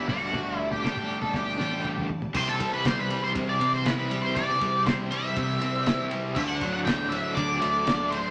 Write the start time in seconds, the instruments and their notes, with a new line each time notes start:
Already playing: string machine G3 D5 D6, overdriven electric guitar G4
0.08 picked electric bass D2, overdriven electric guitar D3 G3 A3 D4, lead electric guitar F#4, string machine A5, floor tom, mid tom
0.33 kick, floor tom
0.58 lead electric guitar E4
0.71 lead electric guitar G4, floor tom
0.83 overdriven electric guitar D3 G3 A3 D4, kick, snare
0.96 mid tom
1.22 lead electric guitar A4, floor tom
1.33 picked electric bass D2, lead electric guitar G4, kick, snare
1.58 picked electric bass A1, overdriven electric guitar G3 A3 D4, snare
1.62 overdriven electric guitar D3
1.84 kick
1.97 mid tom
2.09 kick
2.22 floor tom
2.34 picked electric bass C2, overdriven electric guitar C3, string machine E3 G3 C4 G4 C5, lead electric guitar C5, kick, crash
2.48 lead electric guitar A4, snare
2.60 overdriven electric guitar G3, kick, ride
2.73 lead electric guitar B4
2.85 overdriven electric guitar C3, lead electric guitar C5, kick, snare, ride
3.00 lead electric guitar B4
3.10 overdriven electric guitar G3, ride
3.24 lead electric guitar C5
3.35 picked electric bass C2, overdriven electric guitar C3, kick, ride
3.49 lead electric guitar D5
3.60 picked electric bass C2, overdriven electric guitar C4, ride
3.74 lead electric guitar C5
3.86 overdriven electric guitar E4, lead electric guitar B4, snare, ride
3.99 lead electric guitar B4
4.11 overdriven electric guitar G3, ride
4.23 lead electric guitar C5
4.35 picked electric bass C2, overdriven electric guitar C3, lead electric guitar D5, kick, ride
4.50 snare
4.61 overdriven electric guitar G3, kick, ride
4.86 overdriven electric guitar C3, lead electric guitar C5, kick, snare, ride
5.11 overdriven electric guitar G3, lead electric guitar E5, ride
5.36 picked electric bass C2, overdriven electric guitar C3, kick, ride
5.61 picked electric bass C2, overdriven electric guitar C4, ride
5.86 overdriven electric guitar E4, snare, ride
6.11 overdriven electric guitar G3, ride
6.35 picked electric bass D2, overdriven electric guitar D3, string machine F#3 A3 D4 A4 D5, lead electric guitar E5, kick, crash
6.48 lead electric guitar F#5
6.61 overdriven electric guitar F#3, kick, ride
6.73 lead electric guitar F#5
6.85 overdriven electric guitar D3, lead electric guitar G5, kick, snare, ride
7.09 overdriven electric guitar F#3, lead electric guitar E5, ride
7.35 picked electric bass D2, overdriven electric guitar D3, lead electric guitar D5, kick, ride
7.61 picked electric bass D2, overdriven electric guitar A3, ride
7.87 overdriven electric guitar D4, snare, ride
8.11 overdriven electric guitar F#3, lead electric guitar C5, ride